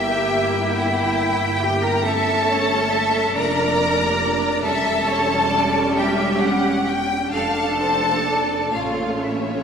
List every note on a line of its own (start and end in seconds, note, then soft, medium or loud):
0.00 3.34 G1 medium
0.00 2.00 A#3 medium
0.00 2.00 E4 medium
0.00 0.72 G4 loud
0.00 0.72 E5 loud
0.00 0.72 G5 loud
0.75 1.60 E4 loud
0.75 1.62 E5 medium
0.75 2.04 G5 loud
1.61 1.83 G4 loud
1.61 1.83 G5 loud
1.83 2.04 A#4 loud
1.83 2.05 A#5 loud
2.03 4.60 A3 loud
2.03 3.30 C#4 loud
2.03 3.34 A4 loud
2.03 2.46 E5 loud
2.03 3.35 A5 loud
2.48 2.91 C#5 loud
2.90 3.34 E5 loud
3.33 4.61 F1 loud
3.33 4.60 D4 loud
3.33 4.64 A#4 loud
3.33 4.62 D5 loud
3.33 4.62 A#5 loud
4.63 7.33 E1 loud
4.63 7.29 G3 loud
4.63 7.29 C#4 loud
4.63 5.94 A4 loud
4.63 5.07 E5 loud
4.63 5.94 A5 loud
5.07 5.51 C#5 loud
5.51 5.96 D5 medium
5.96 6.87 G4 loud
5.96 6.41 E5 medium
5.96 6.85 G5 loud
6.40 6.86 F#5 loud
6.86 7.32 G5 loud
7.32 8.70 F1 medium
7.32 9.63 A3 medium
7.32 8.69 D4 medium
7.32 8.70 A4 loud
7.32 7.77 F5 loud
7.32 8.70 A5 loud
7.79 8.25 C5 medium
8.25 8.73 D5 medium
8.73 9.63 A1 medium
8.73 9.63 C#4 medium
8.73 9.23 F4 loud
8.73 9.63 C#5 medium
8.73 9.21 F5 medium
9.22 9.32 E4 medium
9.22 9.63 E5 medium
9.33 9.41 F4 medium
9.41 9.50 E4 medium
9.51 9.59 F4 medium
9.60 9.63 E4 medium